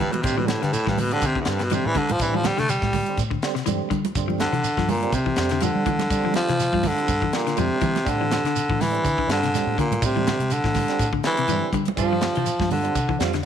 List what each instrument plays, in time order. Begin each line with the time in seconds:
0.00 baritone saxophone G2, clean electric guitar E3, fingered electric bass E3, high conga, low conga, shekere
0.12 baritone saxophone B2, closed hi-hat, high conga
0.22 fingered electric bass A2, baritone saxophone C3, tonewheel organ D3 G3 C4, kick, closed hi-hat, low conga
0.27 shekere
0.38 baritone saxophone B2, clean electric guitar E3, high conga
0.47 baritone saxophone A2, snare, closed hi-hat, high conga, shekere
0.62 baritone saxophone G2, clean electric guitar D3, fingered electric bass D3, snare, closed hi-hat
0.73 baritone saxophone A2, muted fingered electric bass stroke, closed hi-hat, shekere
0.86 baritone saxophone G2, fingered electric bass A2, clean electric guitar E3, kick, snare, high conga
0.98 baritone saxophone B2, open hi-hat, high conga, low conga, shekere
1.11 baritone saxophone D3, tonewheel organ D3 G3 C4, closed hi-hat
1.21 fingered electric bass D3, kick, closed hi-hat, shekere
1.26 baritone saxophone C3
1.35 clean electric guitar D3, kick
1.41 baritone saxophone E2
1.45 fingered electric bass G2, tonewheel organ D3 G3 C4, snare, closed hi-hat, shekere
1.49 baritone saxophone G2
1.59 muted clean electric guitar stroke, snare, closed hi-hat
1.64 baritone saxophone B2
1.70 tonewheel organ D3 G3 C4, clean electric guitar E3, closed hi-hat, high conga, shekere
1.74 baritone saxophone C3
1.86 fingered electric bass A2, baritone saxophone E3
1.95 clean electric guitar D3, baritone saxophone D3, kick, closed hi-hat, high conga, low conga, shekere
2.09 fingered electric bass A2, baritone saxophone F3, closed hi-hat, high conga
2.19 fingered electric bass A2, tonewheel organ D3 G3 C4, baritone saxophone E3, kick, closed hi-hat, shekere
2.34 clean electric guitar E3, baritone saxophone F3, high conga
2.44 baritone saxophone G3, snare, closed hi-hat, high conga, low conga, shekere
2.57 fingered electric bass C3, clean electric guitar D3, baritone saxophone A3, snare, closed hi-hat
2.69 baritone saxophone G3, closed hi-hat, shekere
2.82 fingered electric bass A2, kick, snare, high conga
2.93 kick, open hi-hat, high conga, low conga, shekere
3.06 tonewheel organ D3 G3 C4, closed hi-hat
3.17 fingered electric bass A2, kick, closed hi-hat, shekere
3.30 clean electric guitar D3, kick
3.42 tonewheel organ D3 G3 C4, snare, closed hi-hat, shekere
3.55 clean electric guitar C3, snare, closed hi-hat
3.66 fingered electric bass G2, tonewheel organ D3 G3 C4, clean electric guitar E3, closed hi-hat, high conga, shekere
3.90 clean electric guitar D3, fingered electric bass G3, kick, closed hi-hat, low conga, shekere
4.05 closed hi-hat, high conga
4.15 fingered electric bass G2, tonewheel organ D3 G3 C4, kick, closed hi-hat, low conga, shekere
4.28 clean electric guitar F3, high conga
4.40 baritone saxophone D3, snare, closed hi-hat, high conga, shekere
4.53 fingered electric bass C3, clean electric guitar E3, closed hi-hat
4.64 muted fingered electric bass stroke, closed hi-hat, shekere
4.77 fingered electric bass G2, clean electric guitar F3, kick, snare
4.89 baritone saxophone A#2, open hi-hat, high conga, low conga, shekere
5.03 tonewheel organ D3 G3 C4, closed hi-hat
5.12 fingered electric bass C3, baritone saxophone C3, kick, closed hi-hat, shekere
5.26 clean electric guitar E3, kick
5.36 fingered electric bass F2, tonewheel organ D3 G3, snare, closed hi-hat, shekere
5.40 tonewheel organ C4
5.49 clean electric guitar D3, snare, closed hi-hat
5.61 baritone saxophone D3, tonewheel organ D3 G3 C4, clean electric guitar F3, closed hi-hat, high conga, shekere
5.75 fingered electric bass G3
5.86 clean electric guitar E3, kick, closed hi-hat, high conga, low conga, shekere
5.98 fingered electric bass G3, snare, closed hi-hat, high conga
6.10 tonewheel organ D3 G3 C4, fingered electric bass G3, kick, closed hi-hat, shekere
6.24 clean electric guitar F3, high conga
6.34 baritone saxophone F3, snare, closed hi-hat, high conga, shekere
6.48 fingered electric bass C3, clean electric guitar E3, snare, closed hi-hat
6.60 snare, closed hi-hat, shekere
6.72 fingered electric bass G2, clean electric guitar F3, kick, high conga
6.83 kick, open hi-hat, high conga, low conga, shekere
6.87 baritone saxophone D3
6.97 tonewheel organ D3 G3 C4, closed hi-hat
7.08 fingered electric bass G2, kick, closed hi-hat, shekere
7.22 clean electric guitar E3, kick
7.33 baritone saxophone A#2, tonewheel organ D3 G3 D4, snare, closed hi-hat, shekere
7.47 clean electric guitar D3, snare, closed hi-hat
7.56 fingered electric bass F2, baritone saxophone C3, tonewheel organ D3 G3 C4, clean electric guitar F3, closed hi-hat, high conga, shekere
7.81 clean electric guitar E3, fingered electric bass E3, kick, closed hi-hat, high conga, low conga, shekere
7.96 snare, closed hi-hat, high conga
8.05 fingered electric bass A2, tonewheel organ D3 G3 C4, kick, closed hi-hat, shekere
8.09 baritone saxophone D3
8.21 clean electric guitar E3
8.31 snare, closed hi-hat, high conga, shekere
8.44 fingered electric bass D3, clean electric guitar D3, snare, closed hi-hat
8.56 muted fingered electric bass stroke, closed hi-hat, shekere
8.69 fingered electric bass A2, clean electric guitar E3, kick
8.81 baritone saxophone E3, snare, open hi-hat, high conga, low conga, shekere
8.91 tonewheel organ D3 G3 C4, closed hi-hat
9.04 fingered electric bass D3, kick, closed hi-hat, shekere
9.18 clean electric guitar D3, kick
9.27 fingered electric bass G2, tonewheel organ D3 G3 C4, baritone saxophone D3, snare, closed hi-hat, shekere
9.43 clean electric guitar C3, snare, closed hi-hat
9.54 tonewheel organ D3 G3 C4, snare, closed hi-hat, high conga, shekere
9.67 fingered electric bass A2
9.78 baritone saxophone A#2, clean electric guitar D3, kick, closed hi-hat, low conga, shekere
9.91 fingered electric bass A2, closed hi-hat, high conga
10.01 fingered electric bass A2, baritone saxophone C3, tonewheel organ D3 G3 C4, kick, closed hi-hat, shekere
10.16 clean electric guitar E3, high conga
10.27 snare, closed hi-hat, high conga, low conga, shekere
10.39 fingered electric bass C3, closed hi-hat, high conga
10.50 baritone saxophone D3, closed hi-hat, shekere
10.64 fingered electric bass A2, clean electric guitar E3, kick, snare
10.74 kick, snare, open hi-hat, high conga, low conga, shekere
10.88 tonewheel organ D3 G3 C4, snare, closed hi-hat
10.99 fingered electric bass A2, kick, closed hi-hat, shekere
11.13 clean electric guitar D3, kick
11.24 tonewheel organ D3 G3 C4, baritone saxophone E3, snare, closed hi-hat, shekere
11.37 clean electric guitar C3, closed hi-hat
11.48 fingered electric bass G2, tonewheel organ D3 G3, clean electric guitar E3, closed hi-hat, high conga, shekere
11.53 tonewheel organ C4
11.72 clean electric guitar D3, fingered electric bass G3, kick, closed hi-hat, low conga, shekere
11.85 closed hi-hat, high conga
11.96 fingered electric bass G2, tonewheel organ D3 G3 C4, baritone saxophone F3, clean electric guitar G3 D4 F4 C5, kick, closed hi-hat, shekere
12.13 clean electric guitar F3
12.21 muted clean electric guitar stroke, snare, closed hi-hat, high conga, shekere
12.35 fingered electric bass C3, clean electric guitar E3 D4 F4 C5, closed hi-hat
12.46 muted clean electric guitar stroke, closed hi-hat, shekere
12.60 fingered electric bass G2, clean electric guitar F3, muted clean electric guitar stroke, kick, snare, high conga
12.71 baritone saxophone D3, open hi-hat, high conga, low conga, shekere
12.83 tonewheel organ D3 G3 C4, muted clean electric guitar stroke, closed hi-hat
12.95 fingered electric bass C3, kick, closed hi-hat, shekere
13.09 clean electric guitar E3, muted clean electric guitar stroke, kick
13.19 fingered electric bass F2, tonewheel organ D3 G3 C4, clean electric guitar G3 D4 F4 C5, snare, closed hi-hat, shekere
13.33 clean electric guitar D3, muted clean electric guitar stroke, snare, closed hi-hat